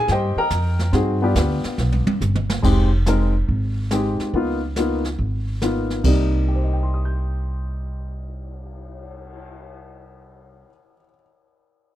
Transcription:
Already playing: A#3 C4 D#4
0.08 G2 G4 D#5 G5, brush sweep, kick, snare
0.12 C5
0.36 A#4 D#5 G5 A#5, muted upright bass stroke
0.50 F2, kick, snare, hi-hat pedal
0.79 snare
0.93 G2 C4 D#4 F#4 G#4, brush sweep, kick, snare
1.22 B3 D4 F4 G4
1.35 D2, kick, snare, hi-hat pedal
1.64 muted upright bass stroke, snare
1.78 B1, snare
1.92 high tom
2.06 muted upright bass stroke, high tom
2.21 G1, hi-hat pedal, mid tom
2.35 mid tom
2.50 snare
2.62 F1 G#3 C4 D#4 G4, brush sweep, kick, crash
3.06 G#3 C4 D#4 A#4, snare, hi-hat pedal
3.48 G#1, brush sweep, kick
3.91 G#3 C4 D#4 G4, snare, hi-hat pedal
4.20 muted upright bass stroke, snare
4.33 C#2 A#3 B3 D#4 F4, brush sweep, kick
4.76 A#3 B3 D#4 F4, snare, hi-hat pedal
5.04 snare
5.18 G#1, brush sweep, kick
5.62 A#3 B3 D#4 F4, snare, hi-hat pedal
5.90 snare
6.04 C2 C3 G3 A#3 D#4, kick, crash
6.33 cymbal swell
6.48 G4
6.55 C5
6.64 D#5
6.73 G5
6.83 C6
6.94 D#6
7.05 G6

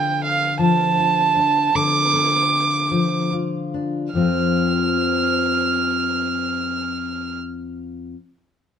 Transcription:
Already playing: D3 F3 A4 G5
0.24 F5
0.59 F3 A5
0.98 F4
1.37 D4
1.75 D3 D6
2.13 A4
2.91 F3
3.33 F4
3.74 D4
4.13 F2 F3 C4 F6
4.19 F4 A4

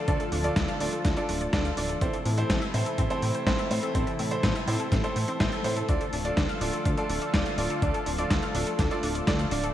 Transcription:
Already playing: D3 F3 A3 F4 A4
0.08 D2 D4 F4 A4 D5, kick, closed hi-hat
0.20 A4, closed hi-hat
0.32 D1 D4, open hi-hat
0.44 D4 F4 A4 D5, closed hi-hat
0.56 D2 D4, kick, snare, closed hi-hat
0.68 F5, closed hi-hat
0.80 D1 D4 F4 A4 D5, open hi-hat
0.93 A4, closed hi-hat
1.05 D2 D4, kick, snare, closed hi-hat
1.17 D4 F4 A4 D5, closed hi-hat
1.29 D1 D4, open hi-hat
1.41 D5, closed hi-hat
1.53 D2 D4 F4 A4 D5, kick, snare, closed hi-hat
1.65 F5, closed hi-hat
1.77 D1 D4 F4 A4 D5, open hi-hat
1.89 A4, closed hi-hat
2.01 A1 C3 E3 A3 C4 E4 A4 C5, kick, closed hi-hat
2.13 A4, closed hi-hat
2.26 A2 C4, open hi-hat
2.38 C4 E4 A4 C5, closed hi-hat
2.50 A1 C4, kick, snare, closed hi-hat
2.62 E5, closed hi-hat
2.74 A2 C4 E4 A4 C5, open hi-hat
2.86 A4, closed hi-hat
2.98 A1 C4, kick, closed hi-hat
3.10 C4 E4 A4 C5, closed hi-hat
3.22 A2 C4, open hi-hat
3.35 C5, closed hi-hat
3.47 A1 C4 E4 A4 C5, kick, snare, closed hi-hat
3.59 E5, closed hi-hat
3.71 A2 C4 E4 A4 C5, open hi-hat
3.83 A4, closed hi-hat
3.95 A1 C4 E4 A4 C5, kick, closed hi-hat
4.07 A4, closed hi-hat
4.19 A2 C4, open hi-hat
4.31 C4 E4 A4 C5, closed hi-hat
4.43 A1 C4, kick, snare, closed hi-hat
4.55 E5, closed hi-hat
4.68 A2 C4 E4 A4 C5, open hi-hat
4.80 A4, closed hi-hat
4.92 A1 C4, kick, snare, closed hi-hat
5.04 C4 E4 A4 C5, closed hi-hat
5.16 A2 C5, open hi-hat
5.28 C4, closed hi-hat
5.40 A1 C4 E4 A4 C5 E5, kick, snare, closed hi-hat
5.52 A4, closed hi-hat
5.64 A2 C4 E4 A4 C5, open hi-hat
5.77 A4, closed hi-hat
5.89 D2 D3 F3 D4 F4 A4 D5, kick, closed hi-hat
6.01 A4, closed hi-hat
6.13 D1 D4, open hi-hat
6.25 D4 F4 A4 D5, closed hi-hat
6.37 D2 D5, kick, snare, closed hi-hat
6.49 F5, closed hi-hat
6.61 D1 D4 F4 A4 D5, open hi-hat
6.73 A4, closed hi-hat
6.85 D2 D4, kick, closed hi-hat
6.97 D4 F4 A4 D5, closed hi-hat
7.10 D1 D4, open hi-hat
7.22 D5, closed hi-hat
7.34 D2 D4 F4 A4 D5, kick, snare, closed hi-hat
7.46 F5, closed hi-hat
7.58 D1 D4 F4 A4 D5, open hi-hat
7.70 A4, closed hi-hat
7.82 D2 D4 F4 A4 D5, kick, closed hi-hat
7.94 A4, closed hi-hat
8.06 D1 D4, open hi-hat
8.18 D4 F4 A4 D5, closed hi-hat
8.30 D2 D5, kick, snare, closed hi-hat
8.43 F5, closed hi-hat
8.55 D1 D4 F4 A4 D5, open hi-hat
8.67 A4, closed hi-hat
8.79 D2 D4, kick, snare, closed hi-hat
8.91 D4 F4 A4 D5, closed hi-hat
9.03 D1 D4, open hi-hat
9.15 D5, closed hi-hat
9.27 D2 D4 F4 A4 D5, kick, snare, closed hi-hat
9.39 F5, closed hi-hat
9.51 D1 D4 F4 A4 D5, open hi-hat
9.63 A4, closed hi-hat

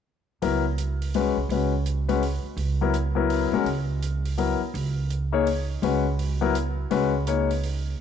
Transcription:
0.42 C#2 F#3 B3 E4 A#4, open hi-hat
0.78 closed hi-hat
1.02 open hi-hat
1.14 G#3 C#4 F#4 B4, open hi-hat
1.37 C2
1.49 C#2 G#3 C#4 F#4 B4, open hi-hat
1.86 closed hi-hat
2.09 G#3 C#4 F#4 B4, open hi-hat
2.23 open hi-hat
2.44 muted upright bass stroke
2.57 C#2, open hi-hat
2.81 F#3 B3 E4 A#4
2.94 closed hi-hat
3.15 F#3 B3 E4 A#4
3.30 open hi-hat
3.52 B1 G#3 C#4 F#4 A#4
3.64 C#2, open hi-hat
4.03 closed hi-hat
4.26 open hi-hat
4.38 F#3 B3 E4 A#4, open hi-hat
4.60 muted upright bass stroke
4.74 C#2, open hi-hat
5.10 closed hi-hat
5.32 A#3 D#4 G#4 C#5
5.47 open hi-hat
5.82 C#2 G#3 C#4 F#4 B4, open hi-hat
6.19 open hi-hat
6.41 F#3 B3 E4 A#4
6.55 closed hi-hat
6.91 C#2 G#3 C#4 F#4 B4, open hi-hat
7.27 A#3 D#4 G#4 C#5, closed hi-hat
7.51 open hi-hat
7.64 open hi-hat

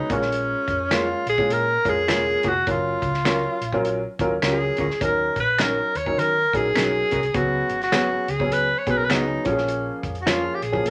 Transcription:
Already playing: G#3 C#4 D#4 F#4 B4
0.09 A#1 G#3 A#3 C#4 F4 G#4 A#4 C#5, kick, closed hi-hat
0.22 snare
0.32 closed hi-hat
0.68 F2, kick, closed hi-hat
0.91 G#3 A#3 C#4 F4 G#4 A#4 C#5, finger snap, snare, closed hi-hat
1.26 A#1 G#4, closed hi-hat
1.38 G#3 C#4 F4 G#4, kick
1.49 A#2 A#4, closed hi-hat
1.85 F2 G#3 C#4 F4 G#4 A#4, kick, closed hi-hat
2.08 E1 G#3 A#3 C#4 F4 G#4 A#4 C#5, finger snap, snare, closed hi-hat
2.43 F1 A#3 F4 G#4 C#5, kick, closed hi-hat
2.48 F#4
2.67 F#1 F#3 C#4 F4 A#4, kick, closed hi-hat
3.02 C#2, kick, closed hi-hat
3.14 snare
3.25 F#3 C#4 F4 A#4 C#5, finger snap, snare, closed hi-hat
3.61 A#1, closed hi-hat
3.73 F#3 C#4 F4 A#4, kick
3.85 closed hi-hat
4.19 D#2 F#3 C#4 F4 A#4, kick, closed hi-hat
4.42 C#2 F#3 C#4 F4 A#4 C#5, finger snap, snare, closed hi-hat
4.47 G#4
4.77 D2 C#4 F4 A#4 C#5, kick, closed hi-hat
4.91 snare
5.01 D#2 F#3 C#4 D#4 A#4, kick, closed hi-hat
5.36 A#1, kick, closed hi-hat
5.40 B4
5.59 F#3 C#4 D#4 F#4 A#4 C#5, finger snap, snare, closed hi-hat
5.95 D#2 C#5, closed hi-hat
6.06 F#3 C#4 D#4 A#4, kick
6.18 D#3 A#4, closed hi-hat
6.53 A#1 F#3 C#4 D#4 G#4 A#4, kick, closed hi-hat
6.75 B1 F#3 C#4 D#4 F#4 A#4 C#5, finger snap, snare, closed hi-hat
7.11 C2 C#4 F#4 A#4 C#5, kick, closed hi-hat
7.23 closed hi-hat
7.34 C#2 F#3 B3 C#4 F#4 G#4, kick, closed hi-hat
7.70 G#1, closed hi-hat
7.82 F#4, snare, closed hi-hat
7.92 F#3 B3 C#4 F#4 G#4 C#5, finger snap, snare, closed hi-hat
8.28 C#2 G#4, closed hi-hat
8.40 F#3 B3 C#4 G#4, kick
8.52 B4, closed hi-hat
8.78 C#5
8.86 B1 F#3 B3 C#4 G#4, kick, closed hi-hat
8.91 B4
8.98 A#4
9.05 B4
9.09 C#2 F#3 B3 C#4 D#4 F#4 G#4 C#5, finger snap, snare, closed hi-hat
9.45 A#1 F3 A#3 C#4 F4 F#4 G#4 C#5, kick, closed hi-hat
9.52 G#4
9.58 snare
9.68 closed hi-hat
10.03 F2, kick, closed hi-hat
10.15 closed hi-hat
10.22 F#4
10.26 F3 A#3 C#4 F4 G#4 C#5, finger snap, snare, closed hi-hat
10.55 G4
10.62 A#1 G#4, closed hi-hat
10.72 F3 A#3 C#4 G#4, kick
10.85 A#2, closed hi-hat

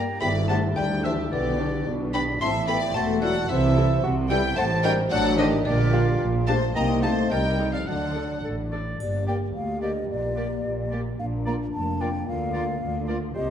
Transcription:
Already playing: G5 A#5
0.21 G1 G2 B3 E4 D5 G5 B5, tam-tam
0.48 A3 D4 G4 C5 F#5 A5
0.76 D2 G3 D4 B4 D5 G5
1.04 E3 D4 G4 C5 E5
1.31 B1 B2 D3 B3 G4 B4 D5
1.59 D4 G4
1.86 B1 B2 D4
2.13 B3 D4 G4 D5 G5 B5
2.41 A1 A2 C4 E4 E5 A5 C6
2.68 B3 E4 A4 D5 G5 B5
2.94 E1 E2 A3 F#4 C5 E5 A5
3.22 F#3 E4 A4 D5 F#5
3.49 C2 C3 E3 E4 A4 C5 E5
3.76 E4 A4
4.03 C2 C3 F#4
4.29 G3 E4 A4 B4 E5 G5
4.56 A1 A2 A3 C4 C5 F#5 A5
4.84 G3 D4 F#4 A#4 D#5 G5
5.11 A1 A2 F#3 D4 A4 D5 F#5
5.38 D#3 D4 F#4 G4 C5 D#5
5.65 A#1 A#2 D3 D4 G4 A#4 D5
5.92 D4 F4 G4
6.20 A#1 A#2
6.47 A3 D4 G4 C5 F5 A5
6.75 C2 C3 A#3 D#4 D#5 G5 A#5
7.02 A3 D#4 G4 C5 F5 A5
7.30 C2 C3 G3 D#4 A#4 D#5 G5
7.59 D#4 A4
7.72 F3 A4 D5 F5
7.86 D2 D3 F#3 D4 A4 D5 F#5
8.15 D4 A4
8.43 A1 A2 A4
8.71 D4 A4 D5
9.00 G1 G2 A#3 G4 D5, triangle
9.27 A#3 G4 D5 G5
9.55 D2 F5
9.82 A#3 G4 D5 D#5
10.09 A#1 A#2 D5
10.36 A#3 G4 D5
10.65 A#1 A#2
10.90 A#3 G4 D5
11.19 A#1 A#2 A#3 D4 F5
11.45 A#3 F4 D5 A#5
11.73 F1 F2 A5
12.00 A#3 F4 D5 G5
12.27 D2 D3 F4 F5
12.53 A#3 F4 A#4 D5
12.81 D2 D3
13.08 A#3 F4 A#4 D5
13.34 C2 C3 G3 G4 C5 D#5

